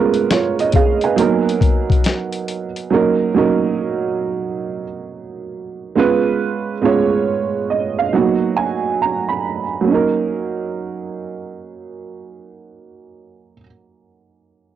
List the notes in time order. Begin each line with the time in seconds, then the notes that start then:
Already playing: G#3 B3 C#4 F4 A#4 B4
0.14 closed hi-hat
0.31 F4 C#5, snare, closed hi-hat
0.59 D#5, closed hi-hat
0.72 G#4 F5, kick, closed hi-hat
1.01 B4 G#5, closed hi-hat
1.16 F#3 A#3 B3 D#4 A#4, closed hi-hat
1.49 closed hi-hat
1.61 kick, closed hi-hat
1.90 kick, closed hi-hat
2.04 snare, closed hi-hat
2.33 closed hi-hat
2.48 closed hi-hat
2.76 closed hi-hat
2.90 F#3 A#3 C#4 D#4 A#4
3.34 F#3 A#3 C#4 D#4 A#4
5.95 G#3 B3 C#4 F4 B4
6.82 G#3 B3 C#4 F4 C#5
7.70 D#5
7.99 F5
8.13 F#3 A#3 B3 D#4 F#4 F#5
8.57 G#5
9.02 A#5
9.29 B5
9.81 F#3 A#3
9.88 C#4 D#4
9.94 A#4